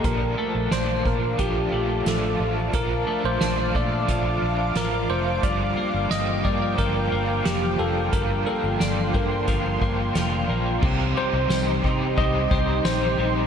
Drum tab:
CC |--------|--------|--------|--------|
RD |--------|--------|--------|--------|
HH |x-x-x-x-|x-x-x-x-|x-x-x-x-|x-x-x-x-|
TB |--------|--------|--------|--------|
SD |--o---o-|--o---o-|--o---o-|--o---o-|
BD |o--oo---|o--oo---|o--oo---|o--ooo--|

CC |x-------|
RD |-xxxx--x|
HH |--------|
TB |--x---x-|
SD |--o---o-|
BD |o--ooo--|